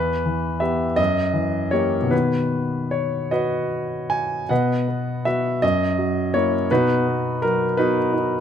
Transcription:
Already playing: E2 B4
0.26 E3
0.60 B3 G4 E5
0.96 F#2 D#5
1.33 E3
1.71 A#3 G4 C#5
2.02 B2
2.08 D#3 B3 F#4 B4
2.91 C#5
3.31 F#4 B4 D#5
4.10 G#5
4.49 B2 B4 D#5 F#5
4.88 B3
5.25 B3 F#4 E5
5.62 F#2 D#5
5.98 F#3
6.34 A#3 E4 C#5
6.71 B2 D#4 F#4 B4
7.07 B3
7.42 F#3 A#4
7.77 B3 D#4 F#4 B4
8.13 D#4

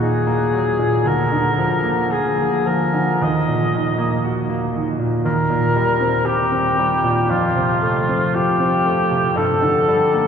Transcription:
Already playing: D#2 A#2 F#3 A#3
0.00 D#4 G#4
0.27 A#3
0.53 F#3
0.79 A#2
1.05 D2 A#4
1.32 D3
1.58 F3
1.83 A#3
2.10 F4 G#4
2.37 A#3
2.66 F3 A#4
2.94 D3
3.22 D#2 D#5
3.48 A#2
3.74 D#3
3.98 A#3
4.24 F#4
4.50 A#3
4.74 D#3
4.99 A#2
5.25 D#2 A#4
5.50 A#2
5.76 G3
6.00 C4
6.25 G4
6.52 C4
6.78 G3
7.04 A#2
7.29 F2 F4
7.56 C3
7.82 A3
8.09 C4
8.35 F4 G4
8.60 C4
8.85 A3
9.11 C3
9.36 G2 A4
9.62 D3
9.88 G3
10.14 A#3

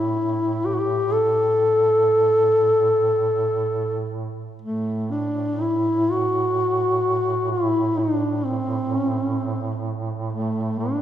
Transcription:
Already playing: A2 E4
0.65 G4
0.74 F#4
0.79 G4
1.13 A4
4.62 A2 A3
5.12 D4
5.61 E4
6.11 F#4
7.52 E4
7.99 D4
8.46 C4
8.96 C#4
9.09 C4
9.24 C#4
9.37 C4
10.33 A3
10.79 D4

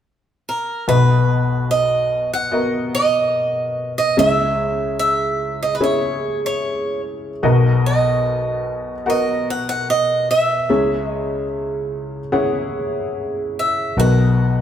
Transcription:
0.49 A#4
0.88 B1 B2 B3 F#4 B4 D#5
1.71 D#5
2.33 F#5
2.52 B3 F#4 A#4 D#5
2.95 D#5
3.98 D#5
4.17 C#2 C#3 C#4 E4 G#4 E5
4.99 E5
5.63 D#5
5.75 B4
5.80 C#4 E4 G#4 C#5 E5
6.46 C#5
7.43 B1 B2 B3 F#4 A#4 D#5
7.86 D#5
9.06 B3 F#4 A#4 D#5 F#5
9.50 F#5
9.69 F#5
9.90 D#5
10.31 E5
10.69 C#2 C#3 C#4 E4 G#4 E5
11.08 D#5
12.32 C#4 E4 G#4 F#5
13.59 E5
13.97 B1 B2 B3 F#4 A#4 D#5 F#5

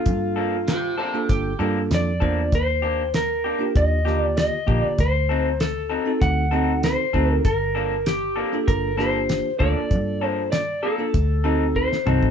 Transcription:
Already playing: A#3 D4 F4 A4
0.06 G2, kick, closed hi-hat
0.36 F3 A#3 D4 A4
0.68 G4 C5, snare, closed hi-hat
0.98 F3 A#3 D4 G4 A4 C5
1.14 A#3 D4 F4 A4
1.29 G1 G4, kick, closed hi-hat
1.59 G2 F3 A#3 D4 F4 A4
1.91 F2 D5, snare, closed hi-hat
2.20 E2 F3 A#3 D4 F4 A4 C5, kick
2.52 D#2 C5, kick, closed hi-hat
2.82 A#3 D4 G4
3.14 A#4, snare, closed hi-hat
3.44 A#3 D4 G4
3.59 A#3 D4 F4 G4
3.76 D#2 D#5, kick, closed hi-hat
4.05 D3 A#3 D4 F4 G4, snare
4.22 D5
4.37 D#5, snare, closed hi-hat
4.67 A#1 D3 A#3 D4 F4 G4, kick
4.83 D5, muted picked electric bass stroke
4.98 D2 C5, kick, closed hi-hat
5.29 F#3 C4 D#4 A4
5.60 A4, snare, closed hi-hat
5.90 F#3 C4 D#4 A4
6.06 C4 D#4 F#4 A4
6.22 D2 F#5, kick, closed hi-hat
6.51 F#3 C4 D#4 F#4 A4
6.83 C5, snare, closed hi-hat
7.13 D2 F#3 C4 D#4 F#4 A4, kick
7.32 A#4
7.45 G1 A#4, kick, closed hi-hat
7.75 F3 A#3 D4 A4
8.06 G4, snare, closed hi-hat
8.36 F3 A#3 D4 A4
8.53 A#3 D4 F4 A4
8.68 G1 A#4, kick, closed hi-hat
8.97 F3 A#3 D4 F4 G4 A4 C5, snare
9.29 snare, closed hi-hat
9.59 D2 F3 A#3 D4 F4 A4 D5, kick
9.91 G2, kick, closed hi-hat
10.21 F3 A#3 D4 A4
10.27 C5
10.52 D5, snare, closed hi-hat
10.83 F3 A#3 D4 A4
10.98 A#3 D4 F4 A4
11.14 D2, kick, closed hi-hat
11.44 F#3 C4 D#4 F#4 A4
11.76 C5, kick
11.93 snare
12.06 C2 F#3 C4 D#4 F#4 A4 C5, mid tom
12.23 A1, kick

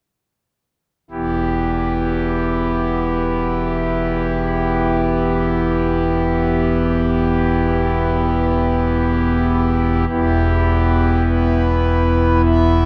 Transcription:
1.11 E1 E2 B3 E4 G4
10.09 E1 E2 B3 E4 G4
11.25 B4
12.45 E5

